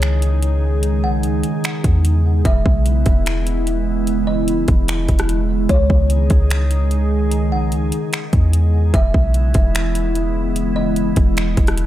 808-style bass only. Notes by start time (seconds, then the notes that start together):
Already playing: C#2
1.03 B1
1.23 C#2
1.84 E2
2.45 E1
2.66 B1
3.06 E1
4.68 E1
5.09 E1
5.69 C#2
5.90 C#2
6.30 C#2
7.52 B1
7.72 C#2
8.33 E2
8.94 E1
9.14 B1
9.55 E1
11.17 E1
11.57 E1